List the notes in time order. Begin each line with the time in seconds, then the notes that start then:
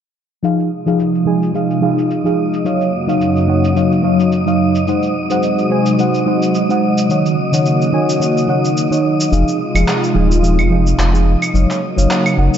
0.43 C3 F3 G#3 D#4 F4 G#4 D#5 F5 D#6, shaker
0.59 shaker
0.86 F3 D#4 G#4 F5, shaker
0.99 shaker
1.15 shaker
1.26 F3 D#4 G#4 G#5
1.43 shaker
1.53 F3 D#4 G#4 F5, shaker
1.70 shaker
1.81 F3 D#4 G#4 F5
1.98 shaker
2.10 shaker
2.24 F3 D#4 G#4 F5, shaker
2.53 shaker
2.64 F#2 C#3 F#3 A#3 D#4 F#4 C#5 F5, shaker
2.81 shaker
3.07 F#3 D#4 C#5 F5, shaker
3.21 shaker
3.36 shaker
3.48 F#3 D#4 C#5 F#5
3.64 shaker
3.75 F#3 D#4 C#5 F5, shaker
3.92 shaker
4.02 F#3 D#4 C#5 F5
4.20 shaker
4.32 shaker
4.46 F#3 D#4 C#5 F5, shaker
4.75 shaker
4.87 C3 G#3 D#4 F#4 C5 F#5, shaker
5.03 shaker
5.30 G#3 D#4 C5 F#5, shaker
5.43 shaker
5.58 shaker
5.70 G#3 D#4 C5 G#5
5.86 shaker
5.98 G#3 D#4 C5 F#5, shaker
6.14 shaker
6.26 G#3 D#4 C5 F#5
6.42 shaker
6.55 shaker
6.69 G#3 D#4 C5 F#5, shaker
6.98 shaker
7.08 C#3 D#3 A#3 D#4 F#4 C#5 F#5, shaker
7.26 shaker
7.52 D#3 D#4 C#5 F#5, shaker
7.66 shaker
7.81 shaker
7.92 D#3 D#4 C#5 G#5
8.09 shaker
8.20 D#3 D#4 C#5 F#5, shaker
8.37 shaker
8.47 D#3 D#4 C#5 F#5
8.65 shaker
8.77 shaker
8.90 D#3 D#4 C#5 F#5, shaker
9.20 shaker
9.31 F1 C3 F3 G#3 D#4 F4 G#4 F5, shaker
9.48 shaker
9.75 F1 F3 D#4 G#4 F5, claves, shaker
9.88 clap, shaker
10.04 shaker
10.14 D#1 F3 D#4 G#4 G#5
10.31 shaker
10.42 F3 D#4 G#4 F5, shaker
10.58 F1, claves, shaker
10.70 F3 D#4 G#4 F5
10.87 shaker
10.98 F1, clap, shaker
11.12 F3 D#4 G#4 F5, shaker
11.42 claves, shaker
11.53 F#1 C#3 F#3 A#3 D#4 F#4 C#5 F5, shaker
11.70 clap, shaker
11.96 F#1 F#3 D#4 C#5 F5, shaker
12.11 clap, shaker
12.26 claves, shaker
12.37 F#1 F#3 D#4 C#5 F#5
12.54 shaker